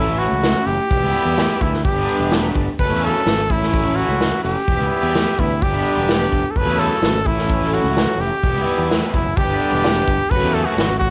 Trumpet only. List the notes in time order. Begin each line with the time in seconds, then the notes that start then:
Already playing: E4
0.19 F#4
0.66 G4
1.62 E4
1.84 G4
2.80 B4
3.04 A4
3.52 E4
3.96 F#4
4.44 G4
5.39 E4
5.62 G4
6.51 A4
6.57 B4
6.79 A4
7.26 E4
7.74 F#4
8.20 G4
9.15 E4
9.36 G4
10.30 B4
10.54 A4
10.65 F#4
10.99 F#4